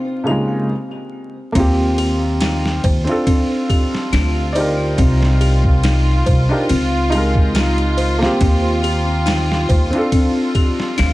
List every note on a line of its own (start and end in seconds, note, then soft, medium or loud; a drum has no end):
0.00 0.69 F4 medium
0.24 0.68 C#3 medium
0.24 0.69 A#3 medium
0.24 0.70 D#4 medium
0.24 0.68 G4 medium
0.29 0.72 G#3 loud
0.29 0.71 F4 medium
1.52 2.80 D#2 loud
1.52 2.82 A#3 loud
1.52 2.84 C4 medium
1.52 1.77 C4 medium
1.52 11.13 F4 medium
1.52 kick loud
1.52 ride medium
1.57 2.85 F4 loud
1.57 2.86 G4 loud
1.98 2.39 G4 loud
1.98 ride medium
2.41 2.63 D#4 loud
2.41 snare loud
2.41 ride medium
2.66 snare medium
2.84 3.05 D#2 loud
2.84 3.06 C5 medium
2.84 kick loud
2.84 ride medium
3.04 4.49 C4 medium
3.04 4.50 D4 medium
3.04 ride soft
3.09 4.52 F4 medium
3.09 4.53 A4 medium
3.27 3.49 C4 medium
3.27 kick loud
3.27 ride medium
3.70 4.10 G4 loud
3.70 kick medium
3.70 ride medium
3.95 snare soft
4.13 4.95 D2 loud
4.13 4.35 D4 loud
4.13 snare loud
4.13 ride medium
4.53 6.44 D#4 medium
4.53 4.77 C5 medium
4.53 6.43 D5 medium
4.53 ride medium
4.58 6.46 G4 medium
4.58 6.47 A#4 loud
4.98 6.23 C2 loud
4.98 5.20 C4 medium
4.98 kick loud
4.98 ride medium
5.23 snare medium
5.41 5.82 G4 loud
5.41 ride medium
5.64 kick loud
5.83 6.06 D#4 loud
5.83 snare loud
5.83 ride medium
6.26 6.47 C2 loud
6.26 6.49 C5 medium
6.26 kick loud
6.26 ride medium
6.49 6.67 D4 medium
6.49 6.67 D#4 medium
6.49 6.68 G4 medium
6.49 6.69 A#4 medium
6.69 8.26 C#2 medium
6.69 6.92 C4 medium
6.69 ride medium
7.10 8.15 D#4 medium
7.10 8.16 F4 medium
7.10 7.53 G4 loud
7.10 ride medium
7.15 8.17 G#3 medium
7.15 8.18 A#4 loud
7.36 kick loud
7.55 7.77 D#4 loud
7.55 snare loud
7.55 ride medium
7.78 ride soft
7.97 8.20 C5 medium
7.97 ride medium
8.19 9.86 A#3 loud
8.19 9.87 C4 medium
8.19 snare medium
8.23 9.88 F4 medium
8.23 9.90 G4 loud
8.41 9.66 D#2 loud
8.41 8.63 C4 medium
8.41 kick loud
8.41 ride medium
8.83 9.24 G4 medium
8.83 ride medium
9.26 9.48 D#4 loud
9.26 snare loud
9.26 ride medium
9.52 snare medium
9.69 9.90 D#2 loud
9.69 9.91 C5 medium
9.69 kick loud
9.69 ride medium
9.90 11.13 C4 medium
9.90 11.13 D4 medium
9.90 ride soft
9.95 11.13 F4 medium
9.95 11.13 A4 medium
10.12 10.34 C4 medium
10.12 kick loud
10.12 ride medium
10.55 10.96 G4 loud
10.55 kick medium
10.55 ride medium
10.80 snare soft
10.98 11.13 D2 loud
10.98 11.13 D4 loud
10.98 snare loud
10.98 ride medium